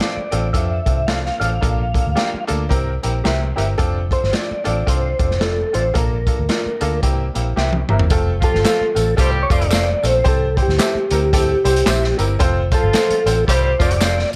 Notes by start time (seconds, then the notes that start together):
0.00 C4 D4 F4 A4 D5 F5, snare, closed hi-hat
0.17 muted fingered electric bass stroke
0.31 A1 C4 D4 F4 A4, closed hi-hat
0.53 F2 C4 D4 F4 A4 E5, kick, closed hi-hat
0.86 C2 C4 D4 F4 A4, kick, closed hi-hat
1.07 C4 D4 F4 A4 D5 F5, snare, closed hi-hat
1.26 snare
1.40 A1 C4 D4 F4 A4 D5 F5, closed hi-hat
1.61 A#1 A#3 D4 F4 A4, kick, closed hi-hat
1.94 A#3 D4 F4 A4, kick, closed hi-hat
2.06 D2
2.15 A#3 D4 F4 G4 A4 D5 F5, snare, closed hi-hat
2.34 muted fingered electric bass stroke
2.47 D2 A#3 D4 F4 A4, closed hi-hat
2.69 C2 C4 E4 G4 A#4, kick, closed hi-hat
3.03 A#1 C4 E4 G4 A#4, closed hi-hat
3.24 C2 C4 E4 G4 A#4 E5, snare, closed hi-hat
3.56 G1 C4 E4 G4 A#4 E5, closed hi-hat
3.78 F1 C4 D4 F4 A4, kick, closed hi-hat
4.10 C4 D4 F4 A4 C5, kick, closed hi-hat
4.23 G1, snare
4.32 C4 D4 F4 A4 D5, snare, closed hi-hat
4.51 muted fingered electric bass stroke
4.64 A1 C4 D4 F4 A4 D5, closed hi-hat
4.86 C2 C4 D4 F4 A4 C5, kick, closed hi-hat
5.19 F1 C4 D4 F4 A4, kick, closed hi-hat
5.31 snare
5.40 C4 D4 F4 A4 D5, snare, closed hi-hat
5.73 A1 C4 D4 F4 A4 C5 D5, closed hi-hat
5.94 A#1 A#3 D4 F4 A4, kick, closed hi-hat
5.98 A#4
6.27 A#3 D4 F4 A4, kick, closed hi-hat
6.39 D2
6.49 A#3 D4 F4 A4 D5, snare, closed hi-hat
6.66 muted fingered electric bass stroke
6.81 D2 A#3 D4 F4 A4, closed hi-hat
7.03 C2 A#3 C4 E4 G4, kick, closed hi-hat
7.34 A#1 A#3 C4 E4 G4 F5, closed hi-hat
7.56 C2 A#3 C4 E4 G4 A#4 E5 G5, snare
7.73 high tom
7.89 G1 A#3 C4 E4 G4 A#4 E5 A#5, mid tom
7.99 floor tom
8.10 F1 A3 C4 F4 A4, kick, closed hi-hat, tambourine
8.40 F3 A3 C4 F4 G4 A4, kick, closed hi-hat, tambourine
8.54 G1, snare
8.64 A3 C4 F4 A4 C5 F5, snare, clap, closed hi-hat, tambourine
8.81 muted fingered electric bass stroke
8.95 A1 A3 C4 F4 A4, closed hi-hat, tambourine
9.16 C2 G3 A3 C4 F4 G4 A4, kick, closed hi-hat, tambourine
9.21 C5
9.43 C#5
9.49 F1 F3 A3 C4 F4 A4 D5, kick, closed hi-hat, tambourine
9.62 closed hi-hat
9.70 A3 C4 F4 A4 C5 F5, snare, clap, closed hi-hat, tambourine
10.02 A#1 A3 C4 F4 A4 C5, closed hi-hat, tambourine
10.24 C2 C4 E4 G4 C5, kick, closed hi-hat, tambourine
10.28 A4
10.57 C4 E4 G4 C5, kick, closed hi-hat
10.63 G4
10.68 D2, snare
10.78 C4 E4 G4 A4 C5 E5, snare, clap, closed hi-hat, tambourine
10.95 muted fingered electric bass stroke
11.11 D2 C4 E4 G4 A#4, closed hi-hat, tambourine
11.33 C4 E4 G4 A4, kick, closed hi-hat, tambourine
11.64 C2 C4 E4 G4 C5, closed hi-hat, tambourine
11.76 closed hi-hat
11.85 A#1 C4 E4 G4 C5 E5, snare, clap, closed hi-hat, tambourine
12.04 snare
12.18 G1 C4 E4 G4 A#4, closed hi-hat, tambourine
12.39 F1 C4 F4 A4 C5, kick, closed hi-hat
12.71 F3 C4 F4 A4 C5, kick, closed hi-hat, tambourine
12.83 G1
12.93 C4 F4 A4 C5 F5, snare, clap, closed hi-hat, tambourine
13.10 muted fingered electric bass stroke, closed hi-hat
13.26 A1 C4 F4 A4 C5, closed hi-hat, tambourine
13.47 C2 G3 C4 F4 G4 A4 C5, kick, closed hi-hat, tambourine
13.79 F1 F3 C4 F4 A4 C5 D5, kick, closed hi-hat, tambourine
13.91 closed hi-hat
14.01 C4 F4 A4 C5 F5, snare, clap, closed hi-hat, tambourine
14.19 snare